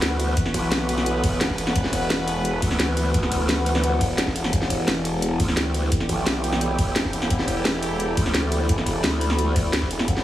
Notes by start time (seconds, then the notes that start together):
Already playing: D2 E3 B3 F#4 A4 B4 D5
0.02 snare, closed hi-hat
0.20 closed hi-hat, ride
0.37 kick, closed hi-hat
0.46 snare
0.54 B1, kick, closed hi-hat, ride
0.72 snare, closed hi-hat
0.89 closed hi-hat, ride
0.98 snare
1.06 closed hi-hat
1.24 kick, closed hi-hat, ride
1.41 E1, snare, closed hi-hat
1.50 kick, snare
1.58 E1, closed hi-hat, ride
1.67 snare
1.76 E1, kick, closed hi-hat
1.84 snare
1.93 kick, closed hi-hat, ride
2.10 snare, closed hi-hat
2.28 closed hi-hat, ride
2.41 F#5, closed hi-hat
2.62 D2, kick, closed hi-hat, ride
2.71 snare
2.80 snare, closed hi-hat
2.97 closed hi-hat, ride
3.14 D2, kick, closed hi-hat
3.23 snare
3.32 kick, closed hi-hat, ride
3.49 snare, closed hi-hat
3.66 closed hi-hat, ride
3.75 snare
3.84 closed hi-hat
4.01 E1, kick, closed hi-hat, ride
4.18 snare, closed hi-hat
4.27 kick, snare
4.36 closed hi-hat, ride
4.44 snare
4.53 E1 E4 G4, kick, closed hi-hat
4.62 snare
4.70 kick, closed hi-hat, ride
4.88 snare, closed hi-hat
5.05 closed hi-hat, ride
5.18 G5, closed hi-hat
5.40 D2, kick, closed hi-hat, ride
5.48 snare
5.57 snare, closed hi-hat
5.74 closed hi-hat, ride
5.92 kick, closed hi-hat
6.00 snare
6.09 B1, kick, closed hi-hat, ride
6.27 snare, closed hi-hat
6.44 closed hi-hat, ride
6.53 snare
6.61 closed hi-hat
6.79 kick, closed hi-hat, ride
6.96 E1, snare, closed hi-hat
7.05 kick, snare
7.13 E1, closed hi-hat, ride
7.22 snare
7.30 E1, kick, closed hi-hat
7.39 snare
7.48 kick, closed hi-hat, ride
7.65 snare, closed hi-hat
7.83 closed hi-hat, ride
7.96 B5, closed hi-hat
8.17 D2, kick, closed hi-hat, ride
8.26 snare
8.35 snare, closed hi-hat
8.52 closed hi-hat, ride
8.69 E1, kick, closed hi-hat
8.78 snare
8.87 kick, closed hi-hat, ride
9.04 D2, snare, closed hi-hat
9.21 closed hi-hat, ride
9.30 snare
9.39 closed hi-hat
9.56 kick, closed hi-hat, ride
9.73 snare, closed hi-hat
9.82 kick, snare
9.91 E1, closed hi-hat, ride
9.99 snare
10.08 E1 A4, kick, closed hi-hat
10.17 snare